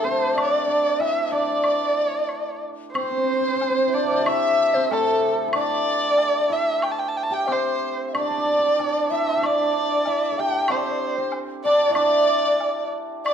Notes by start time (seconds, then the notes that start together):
Already playing: A3 D4 E4 G4 A4
0.04 C4 C5
0.36 D4 D5, high woodblock
0.67 D4 D5
1.00 E4 E5, low woodblock
1.32 D4 D5
1.64 high woodblock
2.29 high woodblock
2.94 C4 C5, high woodblock
3.02 C4
3.11 C4
3.17 C4
3.23 C4
3.33 C4
3.40 C4
3.48 C4
3.56 C4
3.61 C4, low woodblock
3.70 C4
3.78 C4
3.87 E4
3.94 D4 D5
4.19 G4
4.24 E4 E5, high woodblock
4.74 C4 C5
4.91 A3 A4, low woodblock
5.48 E4
5.53 D4 D5, high woodblock
5.57 D5
6.18 low woodblock
6.50 E4 E5
6.82 G5, high woodblock
6.91 A5
6.99 G5
7.08 A5
7.17 G5
7.23 A5
7.30 G4 G5
7.47 C4 C5, high woodblock, low woodblock
7.52 C5
8.07 E5
8.14 D4 D5, high woodblock
8.18 D4 D5
8.30 D4
8.38 D4
8.45 D4
8.53 D4
8.59 D4
8.68 D4
8.79 D4, low woodblock
9.11 E4 E5
9.25 C6 D6
9.33 G5 A5
9.37 E4 E5
9.42 D4 D5, high woodblock
10.05 E4 E5, low woodblock
10.32 A4
10.38 G4 G5
10.68 C4 C5, high woodblock
10.77 D5
10.84 C5
10.91 D5
11.00 C5
11.07 D5
11.17 C4 C5
11.32 low woodblock
11.64 D4 D5
11.90 E4
11.95 D4 D5, high woodblock
12.60 low woodblock
13.24 D5, high woodblock